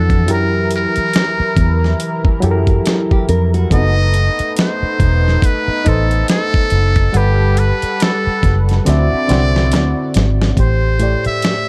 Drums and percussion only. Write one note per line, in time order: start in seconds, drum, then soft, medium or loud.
0.10 kick medium
0.10 closed hi-hat soft
0.28 closed hi-hat medium
0.71 closed hi-hat medium
0.96 closed hi-hat soft
1.14 snare loud
1.14 closed hi-hat medium
1.57 kick loud
1.57 closed hi-hat medium
1.84 snare soft
2.00 closed hi-hat medium
2.25 kick loud
2.42 closed hi-hat medium
2.67 kick medium
2.67 closed hi-hat soft
2.86 snare loud
2.86 closed hi-hat loud
3.11 kick medium
3.29 closed hi-hat medium
3.54 closed hi-hat soft
3.71 kick loud
3.71 closed hi-hat medium
4.14 closed hi-hat medium
4.39 closed hi-hat soft
4.57 snare loud
4.57 closed hi-hat medium
5.00 kick loud
5.00 closed hi-hat medium
5.28 snare soft
5.42 kick loud
5.42 closed hi-hat medium
5.86 kick medium
5.86 closed hi-hat medium
6.11 closed hi-hat soft
6.28 snare loud
6.28 closed hi-hat medium
6.54 kick loud
6.70 closed hi-hat medium
6.96 kick medium
6.96 closed hi-hat soft
7.14 closed hi-hat medium
7.57 closed hi-hat medium
7.82 closed hi-hat soft
8.00 snare loud
8.00 closed hi-hat medium
8.43 kick medium
8.43 snare soft
8.43 closed hi-hat medium
8.69 snare soft
8.69 closed hi-hat soft
8.86 snare medium
8.86 closed hi-hat medium
9.29 snare medium
9.29 closed hi-hat medium
9.56 snare medium
9.72 snare medium
9.72 closed hi-hat medium
10.14 snare loud
10.14 closed hi-hat medium
10.42 snare medium
10.57 kick medium
10.57 closed hi-hat medium
11.00 closed hi-hat medium
11.25 closed hi-hat soft
11.42 snare loud
11.42 closed hi-hat medium